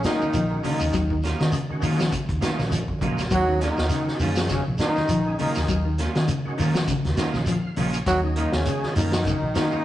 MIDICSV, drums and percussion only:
0, 0, Header, 1, 3, 480
1, 0, Start_track
1, 0, Key_signature, -6, "minor"
1, 0, Tempo, 594648
1, 756, Time_signature, 4, 2, 24, 8
1, 7949, End_track
2, 0, Start_track
2, 0, Title_t, "Shekere"
2, 33, Note_on_c, 9, 82, 92
2, 114, Note_off_c, 9, 82, 0
2, 171, Note_on_c, 9, 82, 29
2, 252, Note_off_c, 9, 82, 0
2, 271, Note_on_c, 9, 82, 84
2, 352, Note_off_c, 9, 82, 0
2, 510, Note_on_c, 9, 82, 33
2, 591, Note_off_c, 9, 82, 0
2, 647, Note_on_c, 9, 82, 74
2, 728, Note_off_c, 9, 82, 0
2, 751, Note_on_c, 9, 82, 72
2, 832, Note_off_c, 9, 82, 0
2, 990, Note_on_c, 9, 82, 31
2, 1070, Note_off_c, 9, 82, 0
2, 1124, Note_on_c, 9, 82, 28
2, 1205, Note_off_c, 9, 82, 0
2, 1227, Note_on_c, 9, 82, 95
2, 1308, Note_off_c, 9, 82, 0
2, 1472, Note_on_c, 9, 82, 101
2, 1553, Note_off_c, 9, 82, 0
2, 1611, Note_on_c, 9, 82, 69
2, 1691, Note_off_c, 9, 82, 0
2, 1711, Note_on_c, 9, 82, 67
2, 1792, Note_off_c, 9, 82, 0
2, 1954, Note_on_c, 9, 82, 89
2, 2034, Note_off_c, 9, 82, 0
2, 2090, Note_on_c, 9, 82, 34
2, 2170, Note_off_c, 9, 82, 0
2, 2195, Note_on_c, 9, 82, 96
2, 2275, Note_off_c, 9, 82, 0
2, 2434, Note_on_c, 9, 82, 31
2, 2514, Note_off_c, 9, 82, 0
2, 2567, Note_on_c, 9, 82, 71
2, 2648, Note_off_c, 9, 82, 0
2, 2670, Note_on_c, 9, 82, 74
2, 2751, Note_off_c, 9, 82, 0
2, 2914, Note_on_c, 9, 82, 30
2, 2995, Note_off_c, 9, 82, 0
2, 3044, Note_on_c, 9, 82, 32
2, 3125, Note_off_c, 9, 82, 0
2, 3142, Note_on_c, 9, 82, 94
2, 3223, Note_off_c, 9, 82, 0
2, 3387, Note_on_c, 9, 82, 98
2, 3467, Note_off_c, 9, 82, 0
2, 3518, Note_on_c, 9, 82, 80
2, 3598, Note_off_c, 9, 82, 0
2, 3624, Note_on_c, 9, 82, 77
2, 3704, Note_off_c, 9, 82, 0
2, 3859, Note_on_c, 9, 82, 88
2, 3940, Note_off_c, 9, 82, 0
2, 4001, Note_on_c, 9, 82, 30
2, 4082, Note_off_c, 9, 82, 0
2, 4105, Note_on_c, 9, 82, 101
2, 4186, Note_off_c, 9, 82, 0
2, 4353, Note_on_c, 9, 82, 32
2, 4434, Note_off_c, 9, 82, 0
2, 4481, Note_on_c, 9, 82, 69
2, 4562, Note_off_c, 9, 82, 0
2, 4593, Note_on_c, 9, 82, 74
2, 4674, Note_off_c, 9, 82, 0
2, 4830, Note_on_c, 9, 82, 30
2, 4910, Note_off_c, 9, 82, 0
2, 4966, Note_on_c, 9, 82, 29
2, 5047, Note_off_c, 9, 82, 0
2, 5072, Note_on_c, 9, 82, 106
2, 5153, Note_off_c, 9, 82, 0
2, 5324, Note_on_c, 9, 82, 101
2, 5405, Note_off_c, 9, 82, 0
2, 5452, Note_on_c, 9, 82, 66
2, 5533, Note_off_c, 9, 82, 0
2, 5550, Note_on_c, 9, 82, 73
2, 5631, Note_off_c, 9, 82, 0
2, 5788, Note_on_c, 9, 82, 88
2, 5869, Note_off_c, 9, 82, 0
2, 5921, Note_on_c, 9, 82, 34
2, 6002, Note_off_c, 9, 82, 0
2, 6020, Note_on_c, 9, 82, 96
2, 6100, Note_off_c, 9, 82, 0
2, 6270, Note_on_c, 9, 82, 28
2, 6351, Note_off_c, 9, 82, 0
2, 6405, Note_on_c, 9, 82, 71
2, 6485, Note_off_c, 9, 82, 0
2, 6517, Note_on_c, 9, 82, 75
2, 6597, Note_off_c, 9, 82, 0
2, 6755, Note_on_c, 9, 82, 32
2, 6836, Note_off_c, 9, 82, 0
2, 6890, Note_on_c, 9, 82, 28
2, 6971, Note_off_c, 9, 82, 0
2, 6992, Note_on_c, 9, 82, 102
2, 7073, Note_off_c, 9, 82, 0
2, 7239, Note_on_c, 9, 82, 108
2, 7320, Note_off_c, 9, 82, 0
2, 7374, Note_on_c, 9, 82, 69
2, 7455, Note_off_c, 9, 82, 0
2, 7483, Note_on_c, 9, 82, 65
2, 7563, Note_off_c, 9, 82, 0
2, 7712, Note_on_c, 9, 82, 103
2, 7793, Note_off_c, 9, 82, 0
2, 7842, Note_on_c, 9, 82, 30
2, 7923, Note_off_c, 9, 82, 0
2, 7949, End_track
3, 0, Start_track
3, 0, Title_t, "Drums"
3, 31, Note_on_c, 9, 42, 58
3, 35, Note_on_c, 9, 38, 75
3, 112, Note_off_c, 9, 42, 0
3, 115, Note_off_c, 9, 38, 0
3, 175, Note_on_c, 9, 63, 90
3, 256, Note_off_c, 9, 63, 0
3, 268, Note_on_c, 9, 42, 64
3, 284, Note_on_c, 9, 63, 85
3, 349, Note_off_c, 9, 42, 0
3, 364, Note_off_c, 9, 63, 0
3, 516, Note_on_c, 9, 46, 68
3, 519, Note_on_c, 9, 63, 75
3, 519, Note_on_c, 9, 64, 81
3, 597, Note_off_c, 9, 46, 0
3, 600, Note_off_c, 9, 63, 0
3, 600, Note_off_c, 9, 64, 0
3, 755, Note_on_c, 9, 36, 90
3, 756, Note_on_c, 9, 42, 84
3, 836, Note_off_c, 9, 36, 0
3, 837, Note_off_c, 9, 42, 0
3, 890, Note_on_c, 9, 36, 64
3, 971, Note_off_c, 9, 36, 0
3, 998, Note_on_c, 9, 63, 101
3, 998, Note_on_c, 9, 64, 72
3, 1005, Note_on_c, 9, 42, 61
3, 1008, Note_on_c, 9, 38, 30
3, 1079, Note_off_c, 9, 63, 0
3, 1079, Note_off_c, 9, 64, 0
3, 1086, Note_off_c, 9, 42, 0
3, 1089, Note_off_c, 9, 38, 0
3, 1133, Note_on_c, 9, 42, 36
3, 1136, Note_on_c, 9, 38, 71
3, 1144, Note_on_c, 9, 63, 78
3, 1213, Note_off_c, 9, 42, 0
3, 1217, Note_off_c, 9, 38, 0
3, 1224, Note_off_c, 9, 63, 0
3, 1240, Note_on_c, 9, 42, 72
3, 1321, Note_off_c, 9, 42, 0
3, 1374, Note_on_c, 9, 63, 64
3, 1455, Note_off_c, 9, 63, 0
3, 1477, Note_on_c, 9, 46, 65
3, 1482, Note_on_c, 9, 63, 85
3, 1482, Note_on_c, 9, 64, 94
3, 1558, Note_off_c, 9, 46, 0
3, 1563, Note_off_c, 9, 63, 0
3, 1563, Note_off_c, 9, 64, 0
3, 1617, Note_on_c, 9, 38, 80
3, 1698, Note_off_c, 9, 38, 0
3, 1713, Note_on_c, 9, 36, 79
3, 1713, Note_on_c, 9, 42, 82
3, 1720, Note_on_c, 9, 63, 91
3, 1794, Note_off_c, 9, 36, 0
3, 1794, Note_off_c, 9, 42, 0
3, 1800, Note_off_c, 9, 63, 0
3, 1847, Note_on_c, 9, 36, 76
3, 1847, Note_on_c, 9, 42, 40
3, 1928, Note_off_c, 9, 36, 0
3, 1928, Note_off_c, 9, 42, 0
3, 1953, Note_on_c, 9, 42, 60
3, 1956, Note_on_c, 9, 38, 73
3, 2033, Note_off_c, 9, 42, 0
3, 2037, Note_off_c, 9, 38, 0
3, 2094, Note_on_c, 9, 38, 30
3, 2097, Note_on_c, 9, 63, 111
3, 2174, Note_off_c, 9, 63, 0
3, 2174, Note_on_c, 9, 63, 119
3, 2175, Note_off_c, 9, 38, 0
3, 2195, Note_on_c, 9, 42, 77
3, 2246, Note_off_c, 9, 63, 0
3, 2246, Note_on_c, 9, 63, 95
3, 2276, Note_off_c, 9, 42, 0
3, 2326, Note_off_c, 9, 63, 0
3, 2326, Note_on_c, 9, 36, 69
3, 2342, Note_on_c, 9, 63, 94
3, 2407, Note_off_c, 9, 36, 0
3, 2412, Note_on_c, 9, 64, 82
3, 2422, Note_off_c, 9, 63, 0
3, 2432, Note_on_c, 9, 36, 75
3, 2433, Note_on_c, 9, 42, 58
3, 2489, Note_off_c, 9, 64, 0
3, 2489, Note_on_c, 9, 64, 85
3, 2512, Note_off_c, 9, 36, 0
3, 2513, Note_off_c, 9, 42, 0
3, 2569, Note_on_c, 9, 42, 34
3, 2570, Note_off_c, 9, 64, 0
3, 2572, Note_on_c, 9, 38, 31
3, 2577, Note_on_c, 9, 64, 96
3, 2650, Note_off_c, 9, 42, 0
3, 2653, Note_off_c, 9, 38, 0
3, 2657, Note_off_c, 9, 64, 0
3, 2657, Note_on_c, 9, 64, 75
3, 2672, Note_on_c, 9, 36, 101
3, 2673, Note_on_c, 9, 42, 79
3, 2738, Note_off_c, 9, 64, 0
3, 2753, Note_off_c, 9, 36, 0
3, 2754, Note_off_c, 9, 42, 0
3, 2913, Note_on_c, 9, 42, 63
3, 2916, Note_on_c, 9, 38, 33
3, 2931, Note_on_c, 9, 63, 106
3, 2994, Note_off_c, 9, 42, 0
3, 2997, Note_off_c, 9, 38, 0
3, 3012, Note_off_c, 9, 63, 0
3, 3049, Note_on_c, 9, 38, 72
3, 3068, Note_on_c, 9, 63, 80
3, 3130, Note_off_c, 9, 38, 0
3, 3149, Note_off_c, 9, 63, 0
3, 3152, Note_on_c, 9, 42, 78
3, 3155, Note_on_c, 9, 38, 31
3, 3233, Note_off_c, 9, 42, 0
3, 3236, Note_off_c, 9, 38, 0
3, 3288, Note_on_c, 9, 38, 35
3, 3369, Note_off_c, 9, 38, 0
3, 3389, Note_on_c, 9, 46, 78
3, 3418, Note_on_c, 9, 63, 93
3, 3418, Note_on_c, 9, 64, 92
3, 3469, Note_off_c, 9, 46, 0
3, 3498, Note_off_c, 9, 63, 0
3, 3498, Note_off_c, 9, 64, 0
3, 3527, Note_on_c, 9, 38, 77
3, 3607, Note_off_c, 9, 38, 0
3, 3628, Note_on_c, 9, 42, 63
3, 3630, Note_on_c, 9, 36, 67
3, 3631, Note_on_c, 9, 38, 28
3, 3650, Note_on_c, 9, 63, 107
3, 3650, Note_on_c, 9, 64, 76
3, 3709, Note_off_c, 9, 42, 0
3, 3711, Note_off_c, 9, 36, 0
3, 3712, Note_off_c, 9, 38, 0
3, 3730, Note_off_c, 9, 63, 0
3, 3730, Note_off_c, 9, 64, 0
3, 3868, Note_on_c, 9, 42, 49
3, 3872, Note_on_c, 9, 38, 70
3, 3949, Note_off_c, 9, 42, 0
3, 3952, Note_off_c, 9, 38, 0
3, 4006, Note_on_c, 9, 38, 29
3, 4018, Note_on_c, 9, 63, 80
3, 4086, Note_off_c, 9, 38, 0
3, 4099, Note_off_c, 9, 63, 0
3, 4105, Note_on_c, 9, 42, 71
3, 4125, Note_on_c, 9, 63, 96
3, 4185, Note_off_c, 9, 42, 0
3, 4206, Note_off_c, 9, 63, 0
3, 4347, Note_on_c, 9, 46, 63
3, 4363, Note_on_c, 9, 63, 70
3, 4363, Note_on_c, 9, 64, 83
3, 4428, Note_off_c, 9, 46, 0
3, 4444, Note_off_c, 9, 63, 0
3, 4444, Note_off_c, 9, 64, 0
3, 4485, Note_on_c, 9, 38, 34
3, 4565, Note_off_c, 9, 38, 0
3, 4585, Note_on_c, 9, 42, 76
3, 4590, Note_on_c, 9, 36, 101
3, 4666, Note_off_c, 9, 42, 0
3, 4671, Note_off_c, 9, 36, 0
3, 4828, Note_on_c, 9, 42, 58
3, 4831, Note_on_c, 9, 38, 32
3, 4845, Note_on_c, 9, 63, 97
3, 4909, Note_off_c, 9, 42, 0
3, 4912, Note_off_c, 9, 38, 0
3, 4926, Note_off_c, 9, 63, 0
3, 4963, Note_on_c, 9, 42, 35
3, 4966, Note_on_c, 9, 38, 73
3, 5044, Note_off_c, 9, 42, 0
3, 5047, Note_off_c, 9, 38, 0
3, 5065, Note_on_c, 9, 42, 75
3, 5146, Note_off_c, 9, 42, 0
3, 5308, Note_on_c, 9, 46, 71
3, 5332, Note_on_c, 9, 63, 100
3, 5332, Note_on_c, 9, 64, 100
3, 5388, Note_off_c, 9, 46, 0
3, 5413, Note_off_c, 9, 63, 0
3, 5413, Note_off_c, 9, 64, 0
3, 5448, Note_on_c, 9, 38, 76
3, 5529, Note_off_c, 9, 38, 0
3, 5550, Note_on_c, 9, 36, 85
3, 5550, Note_on_c, 9, 42, 75
3, 5572, Note_on_c, 9, 63, 100
3, 5572, Note_on_c, 9, 64, 78
3, 5631, Note_off_c, 9, 36, 0
3, 5631, Note_off_c, 9, 42, 0
3, 5653, Note_off_c, 9, 63, 0
3, 5653, Note_off_c, 9, 64, 0
3, 5687, Note_on_c, 9, 42, 35
3, 5690, Note_on_c, 9, 38, 35
3, 5767, Note_off_c, 9, 42, 0
3, 5771, Note_off_c, 9, 38, 0
3, 5786, Note_on_c, 9, 42, 59
3, 5790, Note_on_c, 9, 38, 70
3, 5867, Note_off_c, 9, 42, 0
3, 5870, Note_off_c, 9, 38, 0
3, 5925, Note_on_c, 9, 38, 26
3, 5945, Note_on_c, 9, 63, 84
3, 6005, Note_off_c, 9, 38, 0
3, 6026, Note_off_c, 9, 63, 0
3, 6027, Note_on_c, 9, 42, 74
3, 6051, Note_on_c, 9, 63, 80
3, 6107, Note_off_c, 9, 42, 0
3, 6132, Note_off_c, 9, 63, 0
3, 6265, Note_on_c, 9, 46, 64
3, 6288, Note_on_c, 9, 64, 85
3, 6345, Note_off_c, 9, 46, 0
3, 6368, Note_off_c, 9, 64, 0
3, 6400, Note_on_c, 9, 42, 40
3, 6480, Note_off_c, 9, 42, 0
3, 6507, Note_on_c, 9, 42, 82
3, 6509, Note_on_c, 9, 36, 104
3, 6588, Note_off_c, 9, 42, 0
3, 6590, Note_off_c, 9, 36, 0
3, 6745, Note_on_c, 9, 42, 62
3, 6762, Note_on_c, 9, 63, 91
3, 6762, Note_on_c, 9, 64, 74
3, 6826, Note_off_c, 9, 42, 0
3, 6842, Note_off_c, 9, 63, 0
3, 6842, Note_off_c, 9, 64, 0
3, 6878, Note_on_c, 9, 38, 81
3, 6959, Note_off_c, 9, 38, 0
3, 6983, Note_on_c, 9, 42, 72
3, 7064, Note_off_c, 9, 42, 0
3, 7126, Note_on_c, 9, 38, 35
3, 7141, Note_on_c, 9, 63, 69
3, 7207, Note_off_c, 9, 38, 0
3, 7222, Note_off_c, 9, 63, 0
3, 7227, Note_on_c, 9, 46, 68
3, 7250, Note_on_c, 9, 63, 106
3, 7250, Note_on_c, 9, 64, 91
3, 7308, Note_off_c, 9, 46, 0
3, 7331, Note_off_c, 9, 63, 0
3, 7331, Note_off_c, 9, 64, 0
3, 7362, Note_on_c, 9, 38, 84
3, 7442, Note_off_c, 9, 38, 0
3, 7466, Note_on_c, 9, 36, 75
3, 7466, Note_on_c, 9, 42, 72
3, 7485, Note_on_c, 9, 63, 92
3, 7485, Note_on_c, 9, 64, 70
3, 7547, Note_off_c, 9, 36, 0
3, 7547, Note_off_c, 9, 42, 0
3, 7566, Note_off_c, 9, 63, 0
3, 7566, Note_off_c, 9, 64, 0
3, 7709, Note_on_c, 9, 42, 52
3, 7712, Note_on_c, 9, 38, 82
3, 7790, Note_off_c, 9, 42, 0
3, 7793, Note_off_c, 9, 38, 0
3, 7949, End_track
0, 0, End_of_file